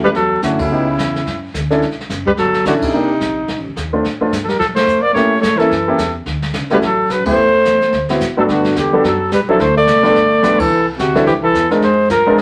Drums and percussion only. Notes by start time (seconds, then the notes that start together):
0.15 brush sweep, kick, snare
0.42 kick, snare, hi-hat pedal
0.59 kick, ride
0.71 brush sweep
0.99 kick, snare, hi-hat pedal
1.16 snare
1.26 brush sweep, kick, snare
1.54 kick, snare, hi-hat pedal
1.71 snare
1.82 brush sweep, kick, snare
1.91 snare
2.00 snare
2.10 kick, snare, hi-hat pedal
2.26 kick
2.37 brush sweep, kick, snare
2.54 snare
2.65 kick, snare, hi-hat pedal
2.82 kick, ride
2.93 brush sweep
3.21 kick, snare, hi-hat pedal
3.48 brush sweep, kick, snare
3.76 kick, snare, hi-hat pedal
4.04 brush sweep, kick, snare
4.32 kick, snare, hi-hat pedal
4.48 snare
4.60 brush sweep, kick, snare
4.76 snare, ride
4.88 hi-hat pedal
5.15 brush sweep, kick, snare
5.43 kick, snare, hi-hat pedal
5.59 snare
5.71 brush sweep, kick, snare
5.98 kick, snare, hi-hat pedal
6.26 brush sweep, kick, snare
6.42 snare
6.53 kick, snare, hi-hat pedal
6.70 snare
6.82 brush sweep, kick, snare
7.10 kick, snare, hi-hat pedal
7.26 kick, ride
7.37 brush sweep
7.65 kick, snare, hi-hat pedal
7.81 snare
7.92 brush sweep, kick, snare
8.09 snare
8.20 kick, snare, hi-hat pedal
8.49 brush sweep, kick, snare
8.64 snare
8.76 kick, snare, hi-hat pedal
9.04 brush sweep, kick, snare
9.31 kick, snare, hi-hat pedal
9.59 brush sweep, kick, snare
9.87 kick, snare, hi-hat pedal
10.04 snare
10.15 brush sweep, kick, snare
10.43 kick, snare, hi-hat pedal
10.59 kick, ride
10.71 brush sweep
10.99 kick, snare, hi-hat pedal
11.15 snare
11.27 brush sweep, kick, snare
11.54 kick, snare, hi-hat pedal
11.71 snare
11.82 brush sweep, kick, snare
12.10 kick, snare, hi-hat pedal
12.38 brush sweep, kick, snare